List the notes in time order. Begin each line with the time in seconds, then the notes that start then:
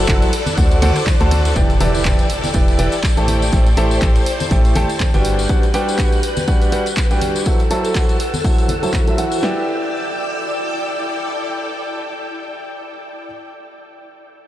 Already playing: E4 A4 D5 E6 F#6
0.08 F#1 F#3 E4 F#4 A4 C5 F#5, kick, clap, closed hi-hat, tambourine
0.22 closed hi-hat, tambourine
0.33 open hi-hat, ride
0.46 closed hi-hat, tambourine, high conga
0.57 D2 D3 D4 F#4 A4 C5 F#5 D6, kick, closed hi-hat, tambourine
0.71 closed hi-hat, tambourine
0.82 D2 D3 D4 F#4 A4 C5 F#5, open hi-hat, ride, high conga
0.96 cross-stick, closed hi-hat, tambourine
1.06 kick, clap, open hi-hat, tambourine, high conga
1.20 D2 D3 D4 F#4 A4 C5 A5, closed hi-hat, tambourine
1.31 cross-stick, open hi-hat, ride, high conga
1.45 closed hi-hat, tambourine
1.56 E1 E3 E4 G4 B4 D5 G5 E6, kick, closed hi-hat, tambourine, impact
1.70 closed hi-hat, tambourine
1.80 E1 E3 E4 G4 B4 D5 A5, open hi-hat
1.95 tambourine
2.05 E1 E3 E4 G4 B4 D5 G5, kick, clap, closed hi-hat, tambourine
2.19 closed hi-hat, tambourine
2.30 open hi-hat
2.34 G5
2.44 closed hi-hat, tambourine, high conga
2.54 E1 E3 E4 G4 B4 D5 G5, kick, closed hi-hat, tambourine
2.68 closed hi-hat, tambourine
2.79 E1 E3 E4 G4 B4 D5 G5, open hi-hat
2.92 closed hi-hat, tambourine
3.03 kick, clap, open hi-hat, tambourine
3.17 A1 A3 E4 G4 A4 C5 A5, closed hi-hat, tambourine
3.28 C5 A5 G6, open hi-hat, high conga
3.42 tambourine
3.53 A1 A3 E4 G4 A4 C5 G5, kick, closed hi-hat, tambourine
3.66 closed hi-hat, tambourine
3.77 A1 A3 E4 G4 A4 C5 A5, open hi-hat
3.91 tambourine
4.01 A1 A3 E4 G4 A4 C5 G5, kick, clap, closed hi-hat, tambourine
4.15 closed hi-hat, tambourine
4.26 open hi-hat
4.40 closed hi-hat, tambourine, high conga
4.51 A1 A3 E4 G4 A4 C5 G5, kick, closed hi-hat, tambourine
4.65 closed hi-hat, tambourine
4.75 A1 A3 E4 G4 A4 C5 G5, open hi-hat, high conga
4.89 closed hi-hat, tambourine
5.00 kick, clap, closed hi-hat, tambourine, high conga
5.14 G1 G3 D4 F#4 G4 B4 G5, closed hi-hat, tambourine
5.25 B4 F#6 G6, open hi-hat
5.39 tambourine
5.49 G3 D4 F#4 G4 B4 F#5, kick, closed hi-hat, tambourine
5.63 closed hi-hat, tambourine
5.74 G3 D4 F#4 G4 B4 G5, open hi-hat
5.89 tambourine
5.98 G3 D4 F#4 G4 B4 F#5, kick, clap, closed hi-hat, tambourine
6.12 closed hi-hat, tambourine
6.23 open hi-hat
6.37 closed hi-hat, tambourine, high conga
6.47 G3 D4 F#4 G4 B4 F#5, kick, closed hi-hat, tambourine
6.62 closed hi-hat, tambourine
6.72 G3 D4 F#4 G4 B4 F#5, open hi-hat
6.86 closed hi-hat, tambourine
6.97 kick, clap, open hi-hat, tambourine
7.11 G3 D4 F#4 G4 B4 G5, closed hi-hat, tambourine
7.21 open hi-hat, high conga
7.36 tambourine
7.46 F#3 E4 F#4 A4 C5 F#5 E6, kick, closed hi-hat, tambourine
7.59 closed hi-hat, tambourine
7.71 F#3 E4 F#4 A4 C5 A5, open hi-hat
7.85 closed hi-hat, tambourine
7.95 F#3 E4 F#4 A4 C5 F#5, kick, clap, closed hi-hat, tambourine
8.09 closed hi-hat, tambourine
8.20 open hi-hat
8.34 closed hi-hat, tambourine, high conga
8.44 F#3 E4 F#4 A4 C5 F#5, kick, closed hi-hat, tambourine
8.58 closed hi-hat, tambourine
8.69 open hi-hat, high conga
8.83 F#3 E4 F#4 A4 C5 A5, closed hi-hat, tambourine
8.93 kick, clap, open hi-hat, tambourine, high conga
9.08 F#3 E4 F#4 A4 C5 E5, closed hi-hat, tambourine
9.18 E3 E4 F#4 A4 C5 F#5, open hi-hat
9.32 tambourine
9.43 E4 G4 B4 D5 G5 E6, snare
9.51 A4
9.59 D5
9.65 G5